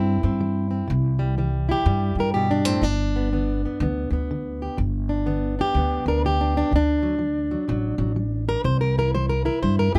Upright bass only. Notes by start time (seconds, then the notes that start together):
Already playing: G2
0.23 G2
0.90 C2
1.86 G2
2.15 G2
2.81 G1
3.80 D2
4.10 D2
4.78 G1
5.74 D2
6.06 D2
6.72 D2
7.69 A1
7.98 A1
8.64 C2
9.63 G2
9.95 G2